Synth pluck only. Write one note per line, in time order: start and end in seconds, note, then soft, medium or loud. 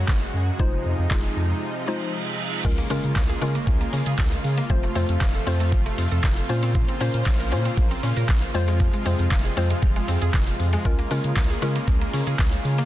0.00 0.25 G#3 medium
0.00 0.25 C#4 medium
0.00 0.25 F#4 medium
0.00 0.25 C#5 medium
0.59 0.87 G#3 medium
0.59 0.87 D#4 medium
0.59 0.87 F4 medium
0.59 0.88 C5 loud
1.11 1.53 G#3 medium
1.11 1.53 D#4 medium
1.11 1.53 F4 medium
1.11 1.53 G#4 medium
1.87 2.30 G#3 medium
1.87 2.30 D#4 medium
1.87 2.30 F4 medium
1.87 2.30 C5 medium
2.64 2.79 G#3 medium
2.64 2.79 C#4 medium
2.64 2.79 F4 medium
2.64 2.79 A#4 loud
2.90 3.18 G#3 medium
2.90 3.18 C#4 medium
2.90 3.18 F4 medium
2.90 3.18 A#4 medium
3.41 3.97 G#3 medium
3.41 3.97 C#4 medium
3.41 3.97 F4 medium
3.41 3.98 A#4 loud
4.70 4.84 A3 medium
4.70 4.84 C4 medium
4.70 4.84 F4 medium
4.70 4.85 C5 loud
4.95 5.23 A3 medium
4.95 5.23 C4 medium
4.95 5.23 F4 medium
4.95 5.23 C5 medium
5.47 6.02 A3 medium
5.47 6.03 C4 medium
5.47 6.03 F4 medium
5.47 6.03 C5 loud
6.49 6.91 A#3 medium
6.49 6.91 C#4 medium
6.49 6.91 F4 medium
6.49 6.91 C5 loud
7.00 7.28 A#3 medium
7.00 7.29 C#4 medium
7.00 7.29 F4 medium
7.00 7.29 C5 loud
7.52 8.08 A#3 medium
7.52 8.08 C#4 medium
7.52 8.08 F4 medium
7.52 8.08 C5 medium
8.54 8.96 G#3 medium
8.54 8.96 C4 medium
8.54 8.96 F4 medium
8.54 8.96 C5 loud
9.05 9.33 G#3 medium
9.05 9.34 C4 medium
9.05 9.34 F4 medium
9.05 9.34 C5 medium
9.57 10.13 G#3 medium
9.57 10.13 C4 medium
9.57 10.13 F4 medium
9.57 10.13 C5 loud
10.85 11.00 G#3 medium
10.85 11.00 C#4 medium
10.85 11.00 F4 medium
10.85 11.00 A#4 loud
11.11 11.39 G#3 medium
11.11 11.39 C#4 medium
11.11 11.39 F4 medium
11.11 11.39 A#4 medium
11.62 12.18 G#3 medium
11.62 12.18 C#4 medium
11.62 12.18 F4 medium
11.62 12.18 A#4 medium